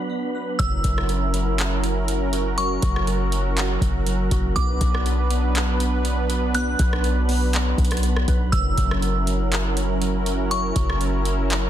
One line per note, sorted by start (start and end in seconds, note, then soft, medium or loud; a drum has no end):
0.00 0.55 F#3 medium
0.00 0.55 B3 medium
0.00 0.55 D4 medium
0.00 0.55 B4 medium
0.00 0.55 F#5 loud
0.10 0.59 B3 medium
0.35 0.59 B4 medium
0.59 0.83 F#1 loud
0.59 0.83 F#3 medium
0.59 4.52 F#3 medium
0.59 4.52 C#4 medium
0.59 4.52 E4 medium
0.59 2.56 E4 medium
0.59 4.52 A#4 medium
0.59 4.52 A#4 loud
0.59 8.49 F#5 loud
0.59 1.54 E6 loud
0.59 kick loud
0.59 closed hi-hat medium
0.84 2.79 F#1 loud
0.84 1.08 F#3 medium
0.84 kick loud
0.84 closed hi-hat medium
0.98 cross-stick loud
1.09 1.32 F#3 medium
1.09 closed hi-hat medium
1.33 1.83 F#3 medium
1.33 closed hi-hat medium
1.59 clap loud
1.59 closed hi-hat medium
1.84 2.07 F#3 medium
1.84 closed hi-hat medium
2.08 2.57 F#3 medium
2.08 closed hi-hat medium
2.33 3.82 F#4 medium
2.33 closed hi-hat medium
2.58 2.81 F#3 medium
2.58 4.54 F#4 medium
2.58 3.53 C#6 loud
2.58 closed hi-hat medium
2.82 3.78 F#1 loud
2.82 3.06 F#3 medium
2.82 kick loud
2.82 closed hi-hat medium
2.96 cross-stick loud
3.07 3.31 F#3 medium
3.07 closed hi-hat medium
3.32 3.81 F#3 medium
3.32 closed hi-hat medium
3.57 clap loud
3.57 closed hi-hat medium
3.81 4.29 F#1 loud
3.81 4.05 F#3 medium
3.81 kick medium
3.81 closed hi-hat medium
4.06 4.56 F#3 medium
4.06 closed hi-hat medium
4.31 4.55 F#1 loud
4.31 4.56 F#4 medium
4.31 kick loud
4.31 closed hi-hat medium
4.56 4.80 B1 loud
4.56 11.70 F#3 medium
4.56 4.80 B3 medium
4.56 8.49 B3 medium
4.56 8.49 D4 medium
4.56 8.49 B4 loud
4.56 8.49 B4 medium
4.56 5.51 D6 loud
4.56 kick loud
4.56 closed hi-hat medium
4.81 6.75 B1 loud
4.81 5.05 B3 medium
4.81 kick loud
4.81 closed hi-hat medium
4.95 cross-stick loud
5.06 5.29 B3 medium
5.06 closed hi-hat medium
5.30 5.79 B3 medium
5.30 closed hi-hat medium
5.55 clap loud
5.55 closed hi-hat medium
5.80 6.04 B3 medium
5.80 closed hi-hat medium
6.05 6.53 B3 medium
6.05 closed hi-hat medium
6.29 7.78 B4 medium
6.29 closed hi-hat medium
6.54 6.78 B3 medium
6.54 7.50 F#6 medium
6.54 closed hi-hat medium
6.79 7.75 B1 loud
6.79 7.03 B3 medium
6.79 kick loud
6.79 closed hi-hat medium
6.93 cross-stick loud
7.04 7.27 B3 medium
7.04 closed hi-hat medium
7.29 7.77 B3 medium
7.29 open hi-hat medium
7.53 clap loud
7.53 closed hi-hat medium
7.78 8.26 B1 loud
7.78 8.02 B3 medium
7.78 kick medium
7.78 closed hi-hat soft
7.85 closed hi-hat medium
7.91 cross-stick medium
7.91 closed hi-hat medium
7.97 closed hi-hat medium
8.03 8.53 B3 medium
8.03 closed hi-hat medium
8.16 cross-stick loud
8.28 8.52 B1 loud
8.28 8.53 B4 medium
8.28 kick loud
8.28 closed hi-hat medium
8.52 8.77 F#1 loud
8.52 8.76 F#3 medium
8.52 11.70 C#4 medium
8.52 11.70 E4 medium
8.52 11.70 A#4 loud
8.52 11.70 A#4 medium
8.52 10.49 F#5 loud
8.52 9.48 E6 loud
8.52 kick loud
8.52 closed hi-hat medium
8.77 10.72 F#1 loud
8.77 9.01 F#3 medium
8.77 kick loud
8.77 closed hi-hat medium
8.91 cross-stick loud
9.02 9.25 F#3 medium
9.02 closed hi-hat medium
9.27 9.76 F#3 medium
9.27 closed hi-hat medium
9.52 clap loud
9.52 closed hi-hat medium
9.77 10.00 F#3 medium
9.77 closed hi-hat medium
10.01 10.50 F#3 medium
10.01 closed hi-hat medium
10.26 11.70 F#4 medium
10.26 closed hi-hat medium
10.51 10.74 F#3 medium
10.51 11.70 E5 loud
10.51 11.46 C#6 loud
10.51 closed hi-hat medium
10.75 11.70 F#1 loud
10.75 11.00 F#3 medium
10.75 kick loud
10.75 closed hi-hat medium
10.90 cross-stick loud
11.01 11.24 F#3 medium
11.01 closed hi-hat medium
11.25 11.70 F#3 medium
11.25 closed hi-hat medium
11.50 clap loud
11.50 closed hi-hat medium